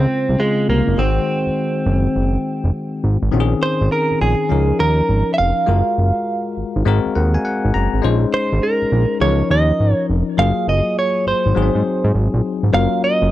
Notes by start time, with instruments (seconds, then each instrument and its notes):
Already playing: tine electric piano C#3 G#3 C4 F4, clean electric guitar C4
0.29 analog synth bass C2
0.38 tine electric piano C#3 G#3 C4 F4, clean electric guitar G#3
0.69 analog synth bass C2, clean electric guitar A#3
0.87 analog synth bass F#1
0.96 analog synth bass G#1, tine electric piano D#3 G#3 C4 F#4, clean electric guitar C4
1.46 analog synth bass F#1
1.86 analog synth bass F#1
2.16 analog synth bass F#1
2.64 analog synth bass F1
3.04 analog synth bass G#1
3.23 analog synth bass G#1
3.32 analog synth bass A#1, tine electric piano D#3 C4 C#4 F#4
3.40 tine electric piano G#4
3.63 clean electric guitar C5
3.81 analog synth bass G#1
3.92 clean electric guitar A#4
4.11 analog synth bass A#1
4.21 analog synth bass A#1, clean electric guitar G#4
4.49 analog synth bass C#2, tine electric piano F3 C#4 D#4 A#4
4.80 analog synth bass D#2, clean electric guitar A#4
5.09 analog synth bass G#1
5.34 clean electric guitar E5
5.38 analog synth bass F1, clean electric guitar F5
5.66 analog synth bass F#1, tine electric piano G#3 F4 F#4 A#4
5.98 analog synth bass F#1
6.57 analog synth bass G#1
6.76 analog synth bass G#1
6.85 analog synth bass G#1, tine electric piano G#3 C4 F#4 A#4
7.05 analog synth bass D#2
7.15 analog synth bass D#2, tine electric piano F#5
7.34 tine electric piano G#5
7.45 tine electric piano F#5
7.65 analog synth bass G#1
7.74 analog synth bass F#1, tine electric piano A#5
7.94 analog synth bass G#1
8.02 analog synth bass A#1, tine electric piano G#3 C#4 D#4 C5
8.34 clean electric guitar C5
8.53 analog synth bass G#1
8.63 clean electric guitar A#4
8.82 analog synth bass A#1
8.92 analog synth bass A#1
9.20 analog synth bass C#2, tine electric piano E3 C#4 D#4 A#4, clean electric guitar C#5
9.27 tine electric piano F3
9.51 analog synth bass D#2, clean electric guitar D#5
9.80 analog synth bass G#1
9.93 clean electric guitar C#5
10.09 analog synth bass F1
10.37 analog synth bass F#1, tine electric piano F#3 A#3 F4 G#4, clean electric guitar F5
10.68 analog synth bass F#1, clean electric guitar D#5
10.99 clean electric guitar C#5
11.27 analog synth bass G#1, clean electric guitar C5
11.46 analog synth bass G#1
11.55 analog synth bass G#1, tine electric piano F#3 B3 D#4 G#4
11.62 tine electric piano C4
11.75 analog synth bass G#2
12.04 analog synth bass G#2
12.14 analog synth bass G#1
12.34 analog synth bass A#1
12.63 analog synth bass G#1
12.73 analog synth bass F#1, tine electric piano F#3 A#3 C#4 F4 A#4, clean electric guitar F5
13.04 clean electric guitar D#5
13.22 analog synth bass F#1